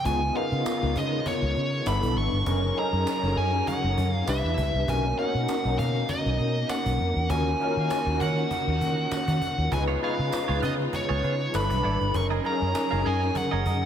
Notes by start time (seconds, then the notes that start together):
0.05 C#2 C#3 G#3 B3 D#4 F4 G#4 G#5, cajon bass
0.22 cajon slap
0.35 B3 D#4 F4 A#4 F5, cajon slap
0.52 C#3, cajon slap
0.66 cajon slap, tambourine
0.82 C#2, cajon slap
0.96 C#3 D#5, cajon bass
1.13 cajon slap
1.26 C#5, cajon bass
1.42 C#2, cajon slap
1.55 C#3, cajon slap
1.72 cajon slap
1.86 G1 G3 B3 D4 E4 A4 B4 B5, cajon slap, tambourine
2.03 B1, cajon bass, cajon slap
2.16 G#1 C#6, cajon slap
2.32 G1, cajon slap
2.46 F#1 F#3 C#4 D#4 G#4 A#4, cajon bass
2.63 cajon slap
2.76 C#4 D#4 G#4 A4 A#5, cajon slap
2.84 A#4
2.93 F#2, cajon slap
3.07 cajon slap, tambourine
3.23 F#1, cajon slap
3.37 F#2 G#5, cajon slap
3.54 cajon slap
3.67 F#5, cajon bass
3.84 F#1, cajon slap
3.98 F#2, cajon bass
4.12 F5, cajon slap
4.27 C2 C3 G3 B3 D4 E4 G4 B4 E5, cajon slap, tambourine
4.44 E2, cajon slap
4.58 C#2, cajon bass
4.74 C2, cajon slap
4.87 B1 A#3 C#4 D#4 F#4 A#4 G#5, cajon bass
5.05 cajon slap
5.18 C#4 D#4 F#4 A#4 F#5, cajon slap
5.34 B2, cajon slap
5.48 cajon slap, tambourine
5.65 B1, cajon slap
5.79 B2 F5, cajon bass
5.95 cajon slap
6.09 D#5, cajon bass
6.25 B1, cajon slap
6.39 B2, cajon slap
6.55 cajon slap
6.69 F#5, cajon slap, tambourine
6.86 B1, cajon bass, cajon slap
7.00 F2, cajon slap
7.16 E2, cajon slap
7.29 D#2 D#3 C#4 D#4 F4 F#4 A#4 G#5, cajon bass
7.47 cajon slap
7.60 C#4 D#4 F#4 A#4, cajon slap
7.76 D#3 C#4 A#4 F5, cajon slap
7.90 G#5, cajon slap, tambourine
8.06 D#2, cajon slap
8.20 D#3 C#4 A#4 F#5, cajon bass
8.37 cajon slap
8.51 cajon bass
8.67 D#2, cajon slap
8.81 D#3, cajon bass
8.97 cajon slap
9.11 F#5, muted fingered electric bass stroke, cajon slap, tambourine
9.27 D#3, cajon bass, cajon slap
9.41 cajon bass
9.58 D#2, cajon slap
9.71 C#2 C#3 G#3 B3 D#4 F4 G#4 B4 G#5, muted clean electric guitar stroke, cajon bass
9.88 B3 F4 G#4 C#5, cajon slap
10.01 B3 D#4 F4 G#4 B4 C#5 F5, cajon slap
10.18 C#3, muted clean electric guitar stroke, cajon slap
10.32 muted clean electric guitar stroke, cajon slap, tambourine
10.48 C#2 B3 F4 G#4 C#5, cajon slap
10.62 C#3 B3 F4 G#4 D#5, cajon bass
10.79 muted clean electric guitar stroke, cajon slap
10.93 C#5, muted clean electric guitar stroke, cajon bass
11.09 C#2 B3 F4 G#4 C#5, cajon slap
11.23 C#3 B3 F4 G#4 C#5, cajon slap
11.39 muted clean electric guitar stroke, cajon slap
11.53 G1 G3 D4 E4 A4 B4 B5, cajon slap, tambourine
11.70 B1, muted clean electric guitar stroke, cajon bass, cajon slap
11.83 G#1 B3 E4 A4 D5, cajon slap
12.00 G1, muted clean electric guitar stroke, cajon slap
12.14 F#1 F#3 C#4 D#4 G#4 A#4 C#6, muted clean electric guitar stroke, cajon bass
12.30 C#4 G#4 A#4 D#5, cajon slap
12.44 C#4 D#4 G#4 A#4 F5 A#5, cajon slap
12.60 F#2, muted clean electric guitar stroke, cajon slap
12.74 muted clean electric guitar stroke, cajon slap, tambourine
12.91 F#1 C#4 G#4 A#4 F5, cajon slap
13.05 F#2 C#4 G#4 A#4 D#5 G#5, cajon slap
13.21 muted clean electric guitar stroke, cajon slap
13.35 F#5, muted clean electric guitar stroke, cajon bass
13.51 F#1 C#4 G#4 A#4 D#5
13.65 F#2 C#4 G#4 A#4 D#5, cajon bass
13.81 muted clean electric guitar stroke, cajon slap